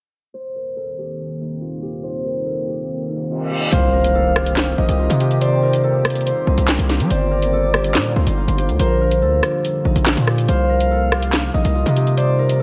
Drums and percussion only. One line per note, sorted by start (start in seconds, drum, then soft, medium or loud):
3.72 closed hi-hat medium
4.04 closed hi-hat medium
4.36 cross-stick loud
4.46 closed hi-hat medium
4.57 snare loud
4.57 clap medium
4.89 closed hi-hat medium
5.10 closed hi-hat medium
5.20 closed hi-hat medium
5.31 closed hi-hat soft
5.41 closed hi-hat medium
5.73 closed hi-hat medium
6.05 cross-stick loud
6.05 closed hi-hat medium
6.10 closed hi-hat medium
6.15 closed hi-hat medium
6.21 closed hi-hat soft
6.27 closed hi-hat medium
6.58 closed hi-hat medium
6.68 snare loud
6.68 clap loud
6.79 closed hi-hat medium
6.89 snare medium
7.00 closed hi-hat medium
7.10 closed hi-hat medium
7.42 closed hi-hat medium
7.74 cross-stick loud
7.84 closed hi-hat medium
7.95 snare loud
7.95 clap medium
8.27 closed hi-hat medium
8.48 closed hi-hat medium
8.58 closed hi-hat medium
8.69 closed hi-hat soft
8.79 closed hi-hat medium
9.11 closed hi-hat medium
9.43 cross-stick loud
9.43 closed hi-hat medium
9.65 closed hi-hat medium
9.96 closed hi-hat medium
10.06 snare loud
10.06 clap loud
10.17 closed hi-hat medium
10.27 cross-stick medium
10.38 closed hi-hat medium
10.49 closed hi-hat medium
10.80 closed hi-hat medium
11.12 cross-stick loud
11.22 closed hi-hat medium
11.33 snare loud
11.33 clap medium
11.65 closed hi-hat medium
11.86 closed hi-hat medium
11.96 closed hi-hat medium
12.07 closed hi-hat soft
12.18 closed hi-hat medium
12.49 closed hi-hat medium